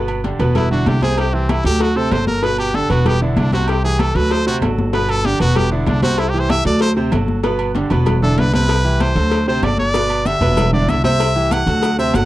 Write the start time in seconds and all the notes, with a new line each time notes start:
Already playing: G1 B2 B3 B4
0.08 high conga, low agogo
0.24 D3 D4 G4, cowbell, high conga, low timbale
0.39 E1 B2 B3 B4, cowbell, high conga, low agogo
0.55 E4, cowbell, high conga, low conga, low agogo
0.71 D3 D4 E4 F#4, high conga, low conga
0.86 C2 G4, cowbell, high conga, low timbale, low agogo
1.02 C3 C4 G#4 C5, cowbell, high conga, low agogo
1.18 G4, cowbell, high conga, low agogo
1.33 E3 C4 E4 G4, high conga
1.49 E4, cowbell, high conga, low timbale, low agogo
1.64 D2 F#3 F#4 G4 A4, cowbell, high conga
1.80 F#4, cowbell, high conga, low agogo
1.96 C3 C4 A4 C5, high conga
2.11 G1 F#3 F#4 A4 C5, cowbell, high conga, low timbale, low agogo
2.27 A#4, high conga
2.42 B2 B3 B4, cowbell, high conga, low agogo
2.58 G4, high conga, low agogo
2.74 D3 D4 G4 A4, cowbell, high conga, low timbale
2.89 E1 B2 B3 F#4 B4, cowbell, high conga, low agogo
3.05 G4, cowbell, high conga, low conga, low agogo
3.21 D3 B3 D4 E4, high conga
3.36 C2 D4, cowbell, high conga, low timbale, low agogo
3.52 C3 C4 F#4 C5, cowbell, high conga, low agogo
3.68 G4, cowbell, high conga, low agogo
3.84 E3 E4 G4 G#4, high conga
3.99 A4, cowbell, high conga, low timbale, low agogo
4.15 D2 F#3 F#4 A4 B4, cowbell, high conga
4.31 C5, cowbell, high conga, low agogo
4.46 C3 C4 F#4 C5, high conga
4.62 G1 F#3 F#4 A4, cowbell, high conga, low timbale, low agogo
4.79 high conga
4.93 B2 B3 B4, cowbell, high conga, low agogo
5.09 A4, high conga, low agogo
5.24 D3 D4 G4, cowbell, high conga, low timbale
5.40 E1 B2 B3 F#4 B4, cowbell, high conga, low agogo
5.55 G4, cowbell, high conga, low conga, low agogo
5.71 D3 B3 D4 E4, high conga
5.87 C2 D4, cowbell, high conga, low timbale, low agogo
6.02 C3 C4 F#4 C5, cowbell, high conga, low agogo
6.18 E4, cowbell, low agogo
6.30 G4
6.34 E3 E4 G4, high conga
6.40 C5
6.50 E5, cowbell, high conga, low timbale, low agogo
6.65 D2 F#3 F#4 A4 D5, cowbell, high conga
6.81 C5, cowbell, high conga, low agogo
6.96 C3 C4 C5, high conga
7.12 G1 F#3 F#4 A4, cowbell, high conga, low timbale, low agogo
7.28 high conga
7.43 B2 B3 B4, cowbell, high conga, low agogo
7.59 high conga, low agogo
7.75 D3 D4 G4, cowbell, high conga, low timbale
7.90 E1 B2 B3 B4, cowbell, high conga, low agogo
8.06 cowbell, high conga, low conga, low agogo
8.22 D3 D4 E4 A4, high conga, low conga
8.37 C2 B4, cowbell, high conga, low timbale, low agogo
8.53 C3 C4 B4, cowbell, high conga, low agogo
8.69 cowbell, high conga, low agogo
8.84 E3 E4 G4, high conga
9.00 C5, cowbell, high conga, low timbale, low agogo
9.15 D2 F#3 F#4 A4, cowbell, high conga
9.31 cowbell, high conga, low agogo
9.47 C3 C4 C5, high conga
9.62 G1 F#3 F#4 A4 D5, cowbell, high conga, low timbale, low agogo
9.78 D5, high conga
9.94 B2 B3 B4, cowbell, high conga, low agogo, maracas
10.10 high conga, low agogo
10.25 D3 D4 G4 E5, cowbell, high conga, low timbale, maracas
10.41 E1 B2 B3 B4, cowbell, high conga, low agogo, maracas
10.57 cowbell, high conga, low conga, low agogo, maracas
10.73 D3 D4 E4 D5, high conga, low conga
10.88 C2 E5, cowbell, high conga, low timbale, low agogo, maracas
11.04 C3 C4 C5 E5, cowbell, high conga, low agogo, maracas
11.20 cowbell, high conga, low agogo, maracas
11.36 E3 E4 G4, high conga
11.51 F#5, cowbell, high conga, low timbale, low agogo, maracas
11.67 D2 F#3 F#4 A4, cowbell, high conga, maracas
11.83 cowbell, high conga, low agogo, maracas
11.98 C3 C4 C5 E5, high conga, maracas
12.14 G1 F#3 F#4 A4 F#5, cowbell, high conga, low timbale, low agogo, maracas